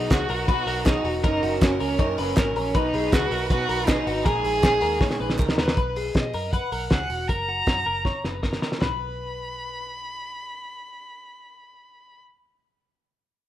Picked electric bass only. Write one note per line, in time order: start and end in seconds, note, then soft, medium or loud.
0.11 0.27 C#2 medium
0.30 0.50 B1 medium
0.48 0.64 B2 loud
0.67 0.99 B1 medium
1.04 1.21 E1 loud
1.24 1.40 F#1 loud
1.43 1.59 F#1 loud
1.62 1.78 F#1 medium
1.81 1.97 C#2 medium
1.99 2.15 F#2 loud
2.19 2.35 F#1 medium
2.37 2.53 G#1 medium
2.56 2.72 A#1 medium
2.75 2.91 B1 loud
2.94 3.10 B1 loud
3.13 3.29 C#2 loud
3.31 3.47 B1 medium
3.50 3.66 B2 loud
3.69 4.01 B1 medium
4.07 4.23 G#1 medium
4.26 4.42 A#1 loud
4.45 4.61 A#1 loud
4.64 4.80 A#1 medium
4.82 5.02 D#2 loud
5.01 5.22 A#2 loud
5.20 5.36 A#1 loud
5.39 5.55 C#2 loud
5.58 5.74 D#2 medium
5.77 6.09 B1 loud
6.15 6.31 B2 medium
6.34 6.58 F#2 medium
6.72 6.88 B1 medium
6.91 7.07 C#2 medium
7.10 7.26 E1 medium
7.29 7.61 F#1 medium
7.67 7.83 F#2 medium
7.86 8.10 F#1 medium
8.24 8.57 F#1 medium
8.82 12.20 B1 medium